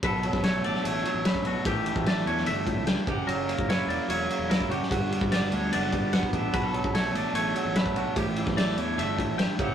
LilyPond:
<<
  \new Staff \with { instrumentName = "Clean electric guitar" } { \time 4/4 \key b \minor \tempo 4 = 147 b'4 cis''8 d''8 cis''4 b'8 fis'8 | g'4 d''8 cis''8 e''4 g''8 fis''8 | ais'4 cis''8 d''8 cis''4 ais'8 fis'8 | r4 d''8 cis''8 d''4 fis''8 e''8 |
b'4 cis''8 d''8 cis''4 b'8 fis'8 | g'4 d''8 cis''8 e''4 g''8 fis''8 | }
  \new Staff \with { instrumentName = "Clean electric guitar" } { \time 4/4 \key b \minor << { a'4 a8 d'8 a2 | <e a d' g'>4 a8 d'8 a4. g'8~ | g'8 ais8 e'8 ais4 ais8 e'8 g'8 | fis'4 b8 d'8 b4 b8 d'8 |
fis'16 a'8. a8 d'8 a4 a8 d'8 | g'4 a8 d'8 a4. <fis ais e' g'>8 | } \\ { b,8 fis2 fis8 cis8 b,8 | a,8 e2 a,8 g,8 fis,8 | fis2 fis4. fis,8 | g,8 g2 g4. |
b,8 fis2 fis4. | a,8 e2 a,8 g,8 fis,8 | } >> }
  \new Staff \with { instrumentName = "Fingered electric bass" } { \clef bass \time 4/4 \key b \minor b,,8. b,,8. a,,16 r16 a,,8 r16 a,,8 r16 b,,16 r16 | a,,8. a,,8. e,8 g,,8. cis,8 r16 fis,,8 | fis,,8. fis,,8. e,,16 r16 e,,8 r16 e,,8 r16 fis,,16 r16 | g,,8. g,,8. d,8 fis,,8. g,,8 r16 a,,8 |
b,,8. b,,8. a,,16 r16 a,,8 r16 a,,8 r16 b,,16 r16 | a,,8. a,,8. e,8 g,,8. a,,8 r16 fis,,8 | }
  \new DrumStaff \with { instrumentName = "Drums" } \drummode { \time 4/4 <bd cymr>8 cymr16 <bd sn>16 <cymr sn>8 cymr16 sn16 cymr8 cymr8 <cymr sn>16 bd16 cymr8 | <bd cymr>8 cymr16 bd16 <cymr sn>16 sn16 cymr16 sn16 cymr8 <bd cymr>8 <cymr sn>8 <bd cymr>8 | cymr8 cymr16 bd16 <cymr sn>8 cymr8 cymr8 cymr8 <cymr sn>16 bd16 cymr16 sn16 | <bd cymr>8 cymr16 bd16 <cymr sn>16 sn16 cymr8 cymr8 <bd cymr>8 <cymr sn>16 bd16 <bd cymr>8 |
<bd cymr>8 cymr16 bd16 <cymr sn>8 cymr8 cymr8 cymr8 <cymr sn>16 bd16 cymr8 | <bd cymr>8 cymr16 <bd sn>16 <cymr sn>16 sn16 cymr8 cymr8 <bd cymr>8 <cymr sn>8 <bd cymr>8 | }
>>